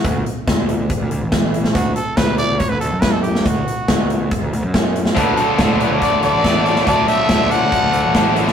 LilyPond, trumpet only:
\new Staff \with { instrumentName = "Trumpet" } { \time 4/4 \key d \major \tempo 4 = 141 fis'8 r2. r8 | fis'8 a'8 b'8 d''8 cis''16 b'16 a'8 b'16 a'16 g'8 | fis'2 r2 | b'8 a'8 a'8 b'16 cis''16 d''8 d''4. |
d''8 e''4 fis''2 r8 | }